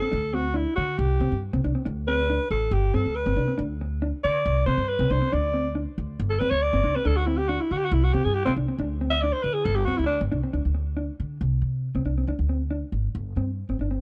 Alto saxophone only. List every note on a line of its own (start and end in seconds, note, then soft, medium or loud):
0.00 0.36 A4 medium
0.34 0.57 F#4 medium
0.56 0.75 E4 medium
0.76 1.00 F#4 medium
0.98 1.42 G4 medium
2.07 2.47 B4 loud
2.51 2.74 A4 medium
2.73 2.96 G4 medium
2.94 3.17 A4 medium
3.15 3.59 B4 medium
4.24 4.64 D5 loud
4.66 4.90 C5 loud
4.89 5.13 B4 medium
5.11 5.34 C5 medium
5.33 5.76 D5 medium
6.30 6.41 A4 medium
6.39 6.52 B4 loud
6.50 6.63 C#5 medium
6.62 6.97 D5 loud
6.95 7.08 B4 medium
7.06 7.18 A4 medium
7.16 7.27 F#4 medium
7.26 7.39 E4 medium
7.37 7.50 G4 loud
7.49 7.62 F#4 medium
7.60 7.73 E4 medium
7.72 7.79 F#4 medium
7.78 7.86 G4 medium
7.85 7.94 F#4 medium
7.93 8.05 E4 medium
8.03 8.15 F#4 medium
8.13 8.26 G4 medium
8.24 8.35 G#4 medium
8.34 8.45 G4 medium
8.45 8.52 C4 medium
9.11 9.23 E5 medium
9.21 9.34 D5 medium
9.32 9.44 C5 medium
9.43 9.55 B4 medium
9.54 9.66 G#4 medium
9.65 9.77 A4 loud
9.75 9.87 G4 medium
9.85 9.99 F#4 medium
9.97 10.06 E4 medium
10.06 10.20 D4 medium